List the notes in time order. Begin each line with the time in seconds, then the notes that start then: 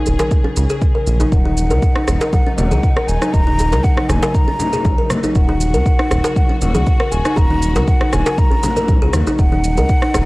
Already playing: C#3 F#3 G#4
0.06 D#1, djembe bass, shaker
0.19 A#4, mid tom, djembe slap, shaker
0.31 kick, djembe tone, shaker
0.44 C#4, djembe bass
0.56 C#2, djembe tone, shaker
0.70 G#4, shaker
0.82 kick, shaker
0.95 A#4, djembe tone
1.07 A#1, shaker
1.20 D#4, djembe tone, shaker
1.32 D#1 D#4 F#5, kick, shaker
1.45 D#4, mid tom, djembe tone
1.57 shaker
1.70 C#2 A#4, muted conga, djembe tone, shaker
1.83 kick, shaker
1.96 D#4, cross-stick
2.08 D#1, cross-stick, muted conga, djembe tone, djembe bass, shaker
2.21 A#4, djembe slap, shaker
2.32 F#5, kick, high conga, djembe tone, shaker
2.46 C#4, muted conga
2.58 D#1 F#5, low conga, shaker
2.71 C#2 G#4, mid tom, djembe tone, high conga, shaker
2.83 kick, muted conga, shaker
2.96 A#4, cross-stick, djembe tone
3.08 D#1 G#5, shaker
3.21 D#4, cross-stick, muted conga, shaker
3.33 D#1 A#5, kick, djembe tone, shaker
3.47 D#4, mid tom
3.59 djembe tone, shaker
3.72 C#2 A#4, djembe slap, muted conga, high conga, shaker
3.84 F#5, kick, shaker
3.97 D#4, cross-stick, djembe tone
4.09 D#1 G#5, cross-stick, low conga, djembe bass, shaker
4.22 A#4, djembe slap, djembe tone, shaker
4.34 A#5, kick, high conga, shaker
4.48 C#4, muted conga, djembe bass
4.59 djembe tone, high conga, low conga, shaker
4.73 G#4, low conga, shaker
4.84 C#2, kick, muted conga, high conga, djembe tone, shaker
4.98 A#4
5.10 cross-stick, high conga, low conga, shaker
5.23 D#4, muted conga, djembe tone, shaker
5.35 D#1 F#4 F#5, kick, shaker
5.48 D#4, mid tom, djembe tone
5.61 shaker
5.74 C#2 A#4, muted conga, shaker
5.86 kick, djembe tone, shaker
5.99 D#4, cross-stick
6.11 D#1, cross-stick, muted conga, djembe tone, djembe bass, shaker
6.24 A#4, djembe slap, shaker
6.36 F#5, kick, high conga, shaker
6.49 C#4, muted conga, djembe tone
6.61 D#1 F#5, low conga, shaker
6.74 C#2 G#4, mid tom, djembe tone, high conga, shaker
6.87 kick, muted conga, shaker
7.00 A#4, cross-stick
7.11 D#1 G#5, djembe tone, shaker
7.24 D#4, cross-stick, muted conga, shaker
7.36 D#1 A#5, kick, djembe tone, shaker
7.50 D#4, mid tom
7.62 shaker
7.76 C#2 A#4, djembe slap, muted conga, djembe tone, high conga, shaker
7.88 F#5, kick, shaker
8.01 D#4, cross-stick, djembe tone
8.13 D#1 G#5, cross-stick, djembe bass, low conga, shaker
8.26 A#4, djembe slap, shaker
8.38 A#5, kick, djembe tone, high conga, shaker
8.51 C#4, muted conga, djembe bass
8.63 djembe tone, high conga, low conga, shaker
8.76 A#4, low conga, shaker
8.88 A#1, kick, muted conga, high conga, shaker
9.02 C#2 G#4, djembe tone
9.13 D#2, cross-stick, high conga, low conga, shaker
9.27 D#4, muted conga, djembe tone, shaker
9.39 D#1 D#4 F#5, kick, shaker
9.52 D#4, mid tom, djembe tone
9.64 shaker
9.77 C#2 A#4, muted conga, djembe tone, shaker
9.89 kick, shaker
10.02 D#4, cross-stick
10.14 D#1, cross-stick, muted conga, djembe tone, djembe bass, shaker